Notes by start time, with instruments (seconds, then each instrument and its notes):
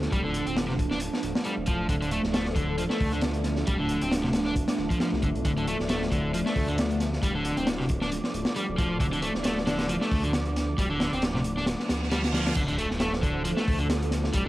Already playing: analog synth pad F3 A3 D4 A4
0.02 snare
0.12 detuned saw bass D1, overdriven electric guitar G3, kick, closed hi-hat
0.24 overdriven electric guitar D3
0.34 closed hi-hat
0.46 detuned saw bass D1, overdriven electric guitar C4, closed hi-hat
0.57 snare, closed hi-hat
0.68 overdriven electric guitar C3, snare
0.79 kick, closed hi-hat
0.91 overdriven electric guitar D4, snare
1.00 closed hi-hat
1.13 snare
1.23 detuned saw bass D1, closed hi-hat
1.35 snare
1.45 overdriven electric guitar G3, closed hi-hat
1.57 detuned saw bass D1
1.66 overdriven electric guitar F3, kick, closed hi-hat
1.89 detuned saw bass D1, overdriven electric guitar D3, kick, closed hi-hat
2.02 overdriven electric guitar D3, closed hi-hat
2.11 overdriven electric guitar A3, closed hi-hat
2.24 detuned saw bass D1, snare
2.34 overdriven electric guitar A3, snare, closed hi-hat
2.45 snare
2.56 overdriven electric guitar D3, kick, closed hi-hat
2.78 overdriven electric guitar F3, closed hi-hat
2.90 overdriven electric guitar A3, snare
3.00 detuned saw bass D2, kick, open hi-hat
3.12 overdriven electric guitar D3, closed hi-hat
3.21 snare, closed hi-hat
3.34 closed hi-hat
3.44 snare, closed hi-hat
3.56 snare
3.67 detuned saw bass D1, overdriven electric guitar G3, kick, closed hi-hat
3.80 overdriven electric guitar D3
3.89 closed hi-hat
4.01 detuned saw bass D1, overdriven electric guitar C4, closed hi-hat
4.12 snare, closed hi-hat
4.24 overdriven electric guitar C3, snare
4.33 snare, closed hi-hat
4.45 overdriven electric guitar D4, snare
4.56 kick, closed hi-hat
4.68 snare, closed hi-hat
4.77 detuned saw bass D1, snare
4.90 overdriven electric guitar F3, kick, closed hi-hat
5.00 overdriven electric guitar F3, snare, closed hi-hat
5.13 detuned saw bass C2, snare
5.22 detuned saw bass F1, overdriven electric guitar D3, kick, closed hi-hat
5.35 detuned saw bass C2, closed hi-hat
5.45 detuned saw bass D1, overdriven electric guitar D3, analog synth pad D5, kick, closed hi-hat
5.57 overdriven electric guitar D3, closed hi-hat
5.67 overdriven electric guitar A3, closed hi-hat
5.79 detuned saw bass D1, snare
5.89 overdriven electric guitar A3, snare, closed hi-hat
6.02 snare
6.12 overdriven electric guitar D3, kick, closed hi-hat
6.34 overdriven electric guitar F3, closed hi-hat
6.46 overdriven electric guitar A3, snare
6.56 detuned saw bass D2, kick, open hi-hat
6.68 overdriven electric guitar D3, closed hi-hat
6.78 snare, closed hi-hat
6.91 closed hi-hat
7.00 snare, closed hi-hat
7.13 snare
7.23 detuned saw bass D1, overdriven electric guitar G3, kick, closed hi-hat
7.35 overdriven electric guitar D3
7.45 closed hi-hat
7.57 detuned saw bass D1, overdriven electric guitar C4, closed hi-hat
7.67 snare, closed hi-hat
7.80 overdriven electric guitar C3, snare
7.89 kick, closed hi-hat
8.01 overdriven electric guitar D4, snare
8.12 closed hi-hat
8.24 snare
8.34 detuned saw bass D1, closed hi-hat
8.45 snare
8.56 overdriven electric guitar G3, closed hi-hat
8.69 detuned saw bass D1
8.78 overdriven electric guitar F3, kick, closed hi-hat
9.00 detuned saw bass D1, overdriven electric guitar D3, kick, closed hi-hat
9.12 overdriven electric guitar D3, closed hi-hat
9.22 overdriven electric guitar A3, closed hi-hat
9.35 detuned saw bass D1, snare
9.44 overdriven electric guitar A3, snare, closed hi-hat
9.57 snare
9.67 overdriven electric guitar D3, snare, closed hi-hat
9.79 snare, closed hi-hat
9.89 overdriven electric guitar F3, closed hi-hat
10.01 overdriven electric guitar A3, snare
10.11 detuned saw bass D2, kick, open hi-hat
10.24 overdriven electric guitar D3, closed hi-hat
10.33 snare, closed hi-hat
10.45 closed hi-hat
10.56 snare, closed hi-hat
10.78 detuned saw bass D1, overdriven electric guitar G3, kick, closed hi-hat
10.90 overdriven electric guitar D3
11.00 snare, closed hi-hat
11.12 detuned saw bass D1, overdriven electric guitar C4, closed hi-hat
11.22 snare, closed hi-hat
11.35 overdriven electric guitar C3, snare
11.44 closed hi-hat
11.57 overdriven electric guitar D4, snare
11.66 snare, closed hi-hat, reverse cymbal
11.80 snare
11.89 detuned saw bass D2, snare, closed hi-hat
12.03 snare
12.11 overdriven electric guitar G3, snare, closed hi-hat
12.24 snare, closed hi-hat
12.34 overdriven electric guitar F3, snare, closed hi-hat
12.46 snare, closed hi-hat
12.56 detuned saw bass D1, overdriven electric guitar D3, analog synth pad F3 A3 D4 A4, kick, closed hi-hat, crash, sub drop
12.68 overdriven electric guitar D3, closed hi-hat
12.78 overdriven electric guitar A3, closed hi-hat
12.91 detuned saw bass D1, snare
13.00 overdriven electric guitar A3, snare, closed hi-hat
13.13 snare
13.23 overdriven electric guitar D3, kick, closed hi-hat
13.45 overdriven electric guitar F3, closed hi-hat
13.57 overdriven electric guitar A3, snare
13.68 detuned saw bass D2, kick, open hi-hat
13.79 overdriven electric guitar D3, closed hi-hat
13.90 snare, closed hi-hat
14.02 closed hi-hat
14.11 snare, closed hi-hat
14.24 snare
14.33 detuned saw bass D1, overdriven electric guitar G3, kick, closed hi-hat